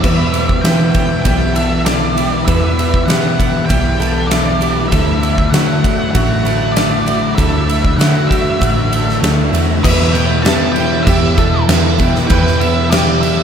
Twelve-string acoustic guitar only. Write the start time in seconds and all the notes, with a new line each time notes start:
0.04 B4
0.65 G4
1.26 G4
1.55 A4
2.17 G4
2.48 B4
3.08 G4
3.69 G4
4.00 A4
4.61 G4
4.92 A4
5.54 F#4
6.15 F#4
6.45 A4
7.06 F#4
7.38 A4
7.99 F#4
8.61 F#4
8.92 A4
9.53 F#4
9.84 B4
10.45 G4
11.07 G4
11.38 A4
11.99 G4
12.30 B4
12.91 G4